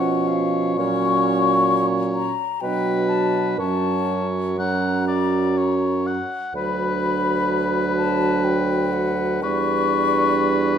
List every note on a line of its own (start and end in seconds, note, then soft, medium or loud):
0.00 0.79 B2 soft
0.00 0.78 F3 soft
0.00 0.74 C#4 soft
0.00 0.75 C#5 soft
0.00 0.29 F#5 medium
0.28 0.75 F5 soft
0.76 2.35 A#2 soft
0.76 2.35 F#3 soft
0.76 2.32 C#4 soft
0.76 2.32 C#5 soft
0.76 1.87 C#6 medium
2.14 2.62 A#5 medium
2.61 3.60 B2 soft
2.61 3.56 F#3 soft
2.61 3.56 D4 soft
2.61 3.56 B4 soft
2.61 3.11 G5 medium
3.09 3.58 A5 medium
3.58 6.22 F#2 soft
3.58 4.56 F#3 soft
3.58 4.57 C#4 soft
3.58 4.56 C#5 soft
3.58 4.27 A5 medium
4.58 6.19 F#3 soft
4.58 6.19 C#4 soft
4.58 5.05 F#5 soft
4.58 6.03 A#5 soft
5.07 5.59 D5 soft
5.57 6.08 C#5 soft
6.07 6.55 F#5 soft
6.54 9.44 D2 soft
6.54 9.39 F#3 soft
6.54 9.40 D4 soft
6.54 9.39 B4 soft
6.54 7.94 B5 medium
7.96 8.46 A5 medium
8.44 8.94 G5 medium
8.93 9.44 F#5 medium
9.43 10.78 E2 soft
9.43 10.78 G3 soft
9.43 10.78 D4 soft
9.43 10.78 B4 soft
9.43 10.78 C#6 medium